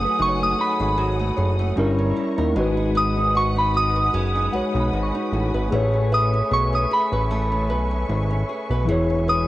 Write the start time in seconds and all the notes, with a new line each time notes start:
Already playing: F#3 A3 C#4 D#4 F#4 G#4 A4 F#5 G#5 B5 D#6
0.01 A3
0.05 B4
0.19 F#1 D#4 C#6
0.29 C#5
0.40 A3 D#6
0.59 D#4 B5
0.80 G#1 G#4
0.98 F#3
1.19 A3
1.37 F#1 G#4 C#5
1.59 A3
1.76 G1 G3 C#4 E4 A#4 E5 A#5 C#6
1.99 C#4
2.17 E4
2.38 D#2 A#4
2.53 G#1 G#3 D#4 B4 D#5 F#5 G#5 D#6
2.57 F#4 B4
2.77 D#4
2.95 B4 D#6
3.17 D#4
3.35 F#4 C#6
3.56 D#4 B5
3.74 F#4 D#6
3.96 B4
4.14 F#1 G#3
4.35 D#4
4.52 B1 G#3 D#4 F#4 B4 C#5 F#5
4.74 B1 D#4
4.80 B5
4.93 G#1 F#4
5.03 C#6
5.15 D#4
5.32 A1 F#4
5.54 G#1 B4
5.69 A1 A3 G#4 E5 C#6
5.73 B4 C#5
5.93 C#4
6.12 B4 E5 D#6
6.34 C#4
6.51 B1 G#4 C#6
6.73 C#4 D#6
6.91 G#4 B5
7.12 A1 B4
7.31 A3
7.52 C#4
7.70 B1 B4
7.91 C#4
8.09 G#1 G#4
8.31 C#4
8.49 G#4
8.70 B1 B4
8.85 E1 E3 E4 E5
8.89 G#4 C#5
9.10 C#4
9.28 B4 D#6